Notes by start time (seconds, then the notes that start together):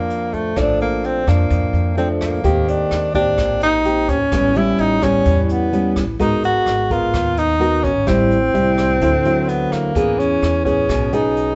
Already playing: F2 F3 A#3 D4
0.10 closed hi-hat
0.33 A3, kick, closed hi-hat
0.56 A#1 A#2 F3 A3 D4, kick, cross-stick, closed hi-hat
0.80 A#3, closed hi-hat
1.04 C4, closed hi-hat
1.27 F2 F3 A#3 D4, kick, cross-stick, closed hi-hat
1.50 F2, kick, closed hi-hat
1.73 F2, closed hi-hat
1.97 F3 A3 C4 D4, closed hi-hat
2.21 A#3, kick, cross-stick, closed hi-hat
2.44 D#2 D#3 A#3 C4 G4, kick, closed hi-hat
2.68 D4, closed hi-hat
2.91 D#2, cross-stick, closed hi-hat
3.14 A#3 C4 D4 G4, kick, closed hi-hat
3.38 A#1 A#2, kick, cross-stick, closed hi-hat
3.61 D#4, closed hi-hat
3.85 A#3 C4 G4, closed hi-hat
4.08 D#2 C#4, kick, closed hi-hat
4.32 A1 A2 G3 B3 C#4, kick, cross-stick, closed hi-hat
4.55 G3 B3 C#4 E4, closed hi-hat
4.78 A1 D#4, closed hi-hat
5.02 G3 B3 C#4, kick, cross-stick, closed hi-hat
5.25 E2 E3, kick, closed hi-hat
5.43 C#4
5.49 B3, closed hi-hat
5.73 G3 B3 C#4, closed hi-hat
5.96 A1, kick, cross-stick, closed hi-hat
6.19 G#1 G#3 B3 D#4 F#4 A#4, kick, closed hi-hat
6.43 F#4, closed hi-hat
6.66 G#1, cross-stick, closed hi-hat
6.90 B3 F4 A#4, kick, closed hi-hat
7.13 D#2 D#3, kick, cross-stick, closed hi-hat
7.37 D#4, closed hi-hat
7.60 B3 F#4 A#4, closed hi-hat
7.84 G#1 C#4, kick, closed hi-hat
8.06 A1 A2 G3 C4 E4, kick, cross-stick, closed hi-hat
8.31 closed hi-hat
8.54 C2 G3 C4 E4, closed hi-hat
8.78 cross-stick, closed hi-hat
9.01 D2 D3 F#3 C4 E4, kick, closed hi-hat
9.25 F#3 C4 E4, closed hi-hat
9.48 B3, closed hi-hat
9.72 D2 A#3, cross-stick, closed hi-hat
9.95 E2 E3 B3 C#4 G#4, kick, closed hi-hat
10.19 C#4, closed hi-hat
10.42 E2, cross-stick, closed hi-hat
10.65 B3 C#4 G#4, kick, closed hi-hat
10.89 B1 B2, kick, cross-stick, closed hi-hat
11.13 B3 C#4 D#4 G#4, closed hi-hat
11.37 closed hi-hat